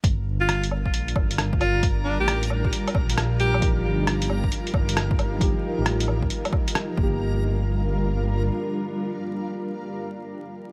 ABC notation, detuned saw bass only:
X:1
M:4/4
L:1/16
Q:"Swing 16ths" 1/4=134
K:Gm
V:1 name="Detuned saw bass" clef=bass
G,,,8 B,,,2 G,,,6- | G,,,3 A,,,4- A,,, z2 B,,,6- | B,,,2 G,,,6 z2 G,,,4 G,,,2- | G,,, z2 A,,,4- A,,, z6 G,,,2- |
G,,,12 z4 | z16 |]